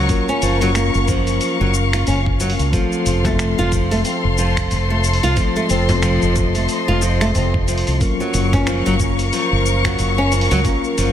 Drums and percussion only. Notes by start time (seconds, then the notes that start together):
0.09 kick, open hi-hat, shaker
0.28 shaker
0.42 open hi-hat, shaker
0.61 open hi-hat, shaker
0.75 finger snap, open hi-hat, shaker
0.94 shaker
1.08 kick, shaker
1.27 open hi-hat, shaker
1.41 open hi-hat, shaker
1.74 shaker
1.93 finger snap, open hi-hat, shaker
2.07 open hi-hat, shaker
2.26 kick
2.40 open hi-hat, shaker
2.50 open hi-hat
2.59 open hi-hat, shaker
2.73 kick, open hi-hat, shaker
2.92 shaker
3.06 open hi-hat, shaker
3.25 kick, open hi-hat, frame drum, shaker
3.39 finger snap, shaker
3.58 shaker
3.72 kick, shaker
3.91 open hi-hat, shaker
4.05 open hi-hat, shaker
4.38 shaker
4.57 finger snap, kick, open hi-hat, shaker
4.71 open hi-hat, shaker
5.04 open hi-hat, shaker
5.13 open hi-hat
5.23 open hi-hat, shaker
5.37 kick, open hi-hat, shaker
5.56 shaker
5.69 open hi-hat, shaker
5.89 open hi-hat, frame drum, shaker
6.03 finger snap, shaker
6.22 shaker
6.36 kick, frame drum, shaker
6.55 open hi-hat, shaker
6.69 open hi-hat, shaker
7.02 shaker
7.21 finger snap, open hi-hat, shaker
7.35 open hi-hat, shaker
7.54 kick
7.68 open hi-hat, shaker
7.78 open hi-hat
7.87 open hi-hat, shaker
8.01 kick, open hi-hat, shaker
8.20 shaker
8.34 open hi-hat, shaker
8.53 kick, open hi-hat, frame drum, shaker
8.67 finger snap, shaker
8.86 shaker
9.00 kick, shaker
9.19 open hi-hat, shaker
9.33 open hi-hat, shaker
9.66 shaker
9.85 finger snap, kick, open hi-hat, shaker
9.99 open hi-hat, shaker
10.32 open hi-hat, shaker
10.41 open hi-hat
10.51 open hi-hat, shaker
10.65 kick, open hi-hat, shaker
10.84 shaker
10.98 open hi-hat, shaker